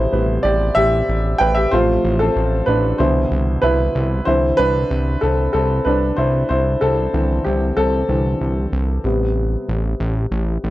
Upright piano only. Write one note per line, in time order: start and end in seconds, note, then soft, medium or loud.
0.00 1.68 B2 medium
0.00 0.10 C3 medium
0.00 0.11 G3 medium
0.00 1.74 E4 medium
0.00 1.71 C5 medium
0.12 0.41 C3 medium
0.12 0.41 G3 soft
0.12 0.41 B4 medium
0.43 0.74 G4 medium
0.43 0.73 D5 loud
0.75 1.36 G4 medium
0.75 1.41 E5 loud
1.38 1.55 B4 medium
1.38 1.56 G5 loud
1.55 1.62 G4 medium
1.55 1.60 E5 loud
1.71 2.95 C3 medium
1.71 2.96 F3 medium
1.71 2.96 A3 medium
1.71 2.17 F4 medium
1.71 2.21 C5 loud
2.19 2.65 C4 medium
2.19 2.64 A4 medium
2.66 2.98 D4 medium
2.66 2.96 B4 medium
2.98 3.42 B2 medium
2.98 3.41 D3 medium
2.98 3.42 E3 medium
2.98 3.60 E4 medium
2.98 3.59 C5 medium
3.62 4.23 E4 medium
3.62 4.28 B4 loud
4.25 4.69 D3 medium
4.25 4.69 E3 medium
4.25 4.69 C4 medium
4.25 4.57 E4 medium
4.25 4.59 C5 loud
4.57 5.19 D4 medium
4.57 5.18 B4 loud
5.21 5.53 C4 medium
5.21 5.51 A4 medium
5.53 5.84 C4 medium
5.53 5.86 A4 medium
5.85 6.16 D4 medium
5.85 6.18 B4 medium
6.16 6.48 E4 medium
6.16 6.47 C5 medium
6.49 6.58 E4 medium
6.49 6.56 C5 medium
6.81 7.13 C4 medium
6.81 7.47 A4 medium
7.13 7.56 D3 medium
7.13 7.56 E3 soft
7.13 7.45 C4 medium
7.44 7.75 C4 medium
7.44 7.78 G4 medium
7.77 8.08 C4 medium
7.77 9.01 A4 loud
8.09 8.38 D3 soft
8.09 8.38 E3 soft
8.09 8.38 C4 medium
9.05 9.96 C3 medium
9.05 9.97 G3 soft
9.05 9.97 B3 medium